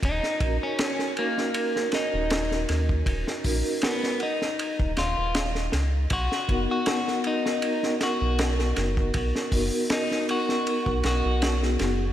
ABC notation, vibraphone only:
X:1
M:4/4
L:1/16
Q:"Swing 16ths" 1/4=79
K:Ebm
V:1 name="Vibraphone"
z2 [DEGB]4 [DEGB]8- [DEGB]2- | [DEGB]2 [DEGB]4 z8 z2 | z2 [=B,^D^F^A]4 [B,DFA]8- [B,DFA]2- | [=B,^D^F^A]2 [B,DFA]4 [B,DFA]6- [B,DFA] [B,DF_A] [B,DFA] z |]